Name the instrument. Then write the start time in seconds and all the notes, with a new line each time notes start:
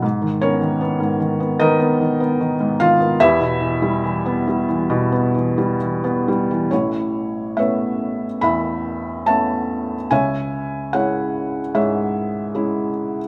felt piano
0.02 G#2
0.22 D#3
0.41 B3 C#4 A#4 C#5
0.62 D#3
0.81 B3
1.00 G#2
1.20 D#3
1.40 B3
1.59 D#3 D#4 A#4 B4 D#5
1.80 B3
2.01 D#3
2.20 B3
2.41 D#3
2.60 G#2
2.80 D#3 F4 F5
3.00 B3
3.20 E2 E4 G4 B4 E5
3.40 B2
3.60 E3
3.82 G3
4.04 E3
4.26 B3
4.48 G3
4.69 E3
4.90 B2
5.12 B3
5.35 E3
5.58 G3
5.81 E3
6.04 B3
6.28 G3
6.51 E3
6.71 A1 A2 E4 C#5
7.57 A3 B3 C#4 B4 C#5 E5
8.41 E2 E5 B5
9.26 A3 B3 C#4 C#5 E5 A5
10.11 C#2 C#3 C#5 E5 G#5
10.93 G#3 C#4 E4 C#5 F#5
11.75 G#2 G#4 C#5 E5
12.55 G#3 C#4 E4